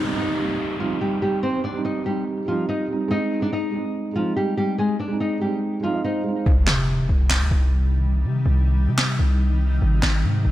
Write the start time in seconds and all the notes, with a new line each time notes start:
Already playing: G3 C4 D#4, downlifter
0.04 G3 C4 D4 D5
0.08 D#4
0.17 D#4 D#5
0.35 G3 C4
0.40 D#4
0.77 F3 G3 C4 F4
0.82 D#4
1.01 G3 G4
1.22 G3 G4
1.43 C4 C5
1.64 D4 D5
1.72 G3 C4
1.77 D#4
1.85 D#4 D#5
2.04 G3 C4 G4
2.09 D#4
2.46 F3 G3 C4 F4
2.50 D#4
2.69 D#4 D#5
2.88 G3 C4
2.93 D#4
3.08 G#3 C4 D#4 D#5
3.13 D#4
3.40 G#3 C4 D4 D5
3.45 D#4
3.53 D#4 D#5
3.71 G#3 C4
3.76 D#4
4.13 F3 G#3 C4 F4
4.18 D#4
4.36 G3 G4
4.57 G3 G4
4.78 G#3 G#4
4.99 D4 D5
5.08 G#3 C4
5.13 D#4
5.20 D#4 D#5
5.39 G3 G#3 C4 G4
5.44 D#4
5.81 F3 G#3 C4 F4 F5
5.86 D#4
5.94 D#5
6.04 D#4 C5 D#5
6.23 G#3 C4
6.28 D#4
6.46 C2 C3 D#3 G3 D#4, impact
6.67 C3, snare, clap
7.09 C2
7.30 snare, clap
7.41 D2
7.51 C2
8.25 C3
8.46 C2
8.88 C3
8.98 snare, clap
9.19 C2
9.82 G#1 G#3
10.03 G#1, snare, clap
10.24 G#2
10.45 G#1